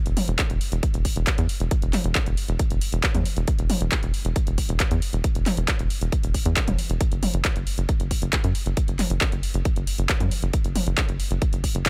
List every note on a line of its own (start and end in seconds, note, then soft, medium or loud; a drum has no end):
0.06 0.15 E1 medium
0.06 closed hi-hat soft
0.17 open hi-hat loud
0.17 mid tom medium
0.28 0.37 E1 medium
0.28 closed hi-hat medium
0.39 kick loud
0.39 clap loud
0.39 closed hi-hat medium
0.50 0.59 E1 medium
0.50 closed hi-hat soft
0.61 open hi-hat medium
0.72 0.81 E1 medium
0.72 closed hi-hat medium
0.83 kick loud
0.83 closed hi-hat medium
0.94 1.03 E1 medium
0.94 closed hi-hat medium
1.05 kick medium
1.05 open hi-hat loud
1.16 1.25 E1 medium
1.16 closed hi-hat medium
1.27 kick loud
1.27 clap loud
1.27 closed hi-hat medium
1.38 1.47 E2 medium
1.38 closed hi-hat medium
1.49 open hi-hat medium
1.60 1.69 E1 medium
1.60 closed hi-hat soft
1.71 kick loud
1.71 closed hi-hat medium
1.82 1.92 E1 medium
1.82 closed hi-hat medium
1.93 clap soft
1.93 open hi-hat loud
1.93 mid tom medium
2.04 2.14 E1 medium
2.04 closed hi-hat medium
2.15 kick loud
2.15 clap loud
2.15 closed hi-hat medium
2.26 2.36 E1 medium
2.26 closed hi-hat soft
2.37 open hi-hat medium
2.48 2.58 E1 medium
2.48 closed hi-hat medium
2.59 kick loud
2.59 closed hi-hat medium
2.70 2.80 E1 medium
2.70 closed hi-hat medium
2.81 open hi-hat loud
2.92 3.02 E1 medium
2.92 closed hi-hat medium
3.03 kick loud
3.03 clap loud
3.03 closed hi-hat medium
3.15 3.24 E2 medium
3.15 closed hi-hat medium
3.15 mid tom medium
3.25 open hi-hat medium
3.37 3.46 E1 medium
3.37 closed hi-hat medium
3.48 kick loud
3.48 closed hi-hat medium
3.59 3.68 E1 medium
3.59 closed hi-hat medium
3.70 open hi-hat loud
3.70 mid tom medium
3.81 3.90 E1 medium
3.81 closed hi-hat medium
3.92 kick loud
3.92 clap loud
3.92 closed hi-hat loud
4.03 4.12 E1 medium
4.03 closed hi-hat medium
4.14 open hi-hat medium
4.25 4.34 E1 medium
4.25 closed hi-hat medium
4.36 kick loud
4.36 closed hi-hat medium
4.47 4.56 E1 medium
4.47 closed hi-hat medium
4.58 kick medium
4.58 open hi-hat loud
4.69 4.78 E1 medium
4.69 closed hi-hat medium
4.80 kick loud
4.80 clap loud
4.80 closed hi-hat medium
4.91 5.00 E2 medium
4.91 closed hi-hat medium
5.02 open hi-hat medium
5.13 5.22 E1 medium
5.13 closed hi-hat medium
5.24 kick loud
5.24 closed hi-hat loud
5.35 5.44 E1 medium
5.35 closed hi-hat medium
5.46 clap soft
5.46 open hi-hat loud
5.46 mid tom medium
5.57 5.66 E1 medium
5.57 closed hi-hat medium
5.68 kick loud
5.68 clap loud
5.68 closed hi-hat loud
5.79 5.89 E1 medium
5.79 closed hi-hat medium
5.90 open hi-hat medium
6.01 6.11 E1 medium
6.01 closed hi-hat medium
6.12 kick loud
6.12 closed hi-hat medium
6.23 6.33 E1 medium
6.23 closed hi-hat medium
6.34 kick medium
6.34 open hi-hat loud
6.45 6.55 E2 medium
6.45 closed hi-hat medium
6.56 kick loud
6.56 clap loud
6.56 closed hi-hat loud
6.68 6.77 E1 medium
6.68 closed hi-hat medium
6.68 mid tom medium
6.79 open hi-hat medium
6.90 6.99 E1 medium
6.90 closed hi-hat medium
7.01 kick loud
7.01 closed hi-hat loud
7.12 7.21 F#1 medium
7.12 closed hi-hat medium
7.23 open hi-hat loud
7.23 mid tom medium
7.34 7.43 F#1 medium
7.34 closed hi-hat medium
7.45 kick loud
7.45 clap loud
7.45 closed hi-hat loud
7.56 7.65 F#1 medium
7.56 closed hi-hat medium
7.67 open hi-hat medium
7.78 7.87 F#1 medium
7.78 closed hi-hat medium
7.89 kick loud
7.89 closed hi-hat medium
8.00 8.09 F#1 medium
8.00 closed hi-hat medium
8.11 kick medium
8.11 open hi-hat loud
8.22 8.31 F#1 medium
8.22 closed hi-hat medium
8.33 kick loud
8.33 clap loud
8.33 closed hi-hat loud
8.44 8.53 F#2 medium
8.44 closed hi-hat medium
8.55 open hi-hat medium
8.66 8.75 F#1 medium
8.66 closed hi-hat medium
8.77 kick loud
8.77 closed hi-hat loud
8.88 8.97 F#1 medium
8.88 closed hi-hat medium
8.99 clap soft
8.99 open hi-hat loud
8.99 mid tom medium
9.10 9.19 F#1 medium
9.10 closed hi-hat medium
9.21 kick loud
9.21 clap loud
9.21 closed hi-hat medium
9.32 9.42 F#1 medium
9.32 closed hi-hat medium
9.43 open hi-hat medium
9.54 9.64 F#1 medium
9.54 closed hi-hat medium
9.65 kick loud
9.65 closed hi-hat medium
9.76 9.86 F#1 medium
9.76 closed hi-hat medium
9.87 open hi-hat loud
9.98 10.08 F#1 medium
9.98 closed hi-hat medium
10.09 kick loud
10.09 clap loud
10.09 closed hi-hat medium
10.20 10.30 F#2 medium
10.20 closed hi-hat medium
10.20 mid tom medium
10.31 open hi-hat loud
10.42 10.52 F#1 medium
10.42 closed hi-hat medium
10.53 kick loud
10.53 closed hi-hat medium
10.64 10.74 F#1 medium
10.64 closed hi-hat medium
10.75 open hi-hat loud
10.75 mid tom medium
10.87 10.96 F#1 medium
10.87 closed hi-hat medium
10.98 kick loud
10.98 clap loud
10.98 closed hi-hat medium
11.09 11.18 F#1 medium
11.09 closed hi-hat soft
11.20 open hi-hat medium
11.31 11.40 F#1 medium
11.31 closed hi-hat medium
11.42 kick loud
11.42 closed hi-hat medium
11.53 11.62 F#1 medium
11.53 closed hi-hat medium
11.64 kick medium
11.64 open hi-hat loud
11.75 11.84 F#1 medium
11.75 closed hi-hat medium
11.86 kick loud
11.86 clap loud
11.86 closed hi-hat medium